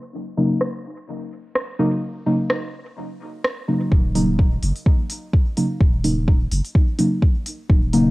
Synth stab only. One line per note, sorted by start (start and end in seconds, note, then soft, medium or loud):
0.37 0.52 C#3 medium
0.37 0.52 F#3 medium
0.37 0.52 A#3 medium
0.37 0.52 D#4 medium
1.79 1.88 C#3 medium
1.79 1.88 F#3 medium
1.79 1.88 A#3 medium
1.79 1.88 D#4 loud
2.26 2.35 C#3 medium
2.26 2.35 F#3 medium
2.26 2.35 A#3 medium
2.26 2.35 D#4 medium
3.68 4.13 C#3 medium
3.68 4.13 F#3 medium
3.68 4.13 A#3 medium
3.68 4.13 D#4 medium
4.15 4.30 C#3 medium
4.15 4.30 F#3 medium
4.15 4.30 A#3 medium
4.15 4.30 D#4 medium
5.57 5.66 C#3 medium
5.57 5.66 F#3 medium
5.57 5.66 A#3 medium
5.57 5.66 D#4 loud
6.04 6.13 C#3 medium
6.04 6.13 F#3 medium
6.04 6.13 A#3 medium
6.04 6.13 D#4 medium
6.99 7.08 C#3 medium
6.99 7.08 F#3 medium
6.99 7.08 A#3 medium
6.99 7.08 D#4 medium
7.93 8.08 C#3 medium
7.93 8.08 F#3 medium
7.93 8.08 A#3 medium
7.93 8.08 D#4 medium